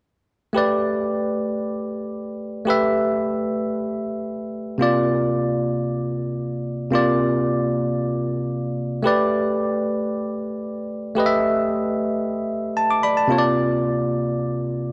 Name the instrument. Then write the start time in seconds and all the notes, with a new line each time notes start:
tine electric piano
0.53 A3 G4 B4
0.58 D5
2.65 A3 G4 B4
2.70 E5
4.78 C3 A#3 F4
4.82 D5
6.90 C3 A#3 F4
6.95 D5
9.03 A3 G4 B4
9.07 D5
11.15 A3 G4 B4
11.20 D#5
11.26 E5
12.77 A5
12.91 D6
13.03 D5 B5
13.17 A5
13.27 C3 A#3 F4
13.32 C#5
13.38 D5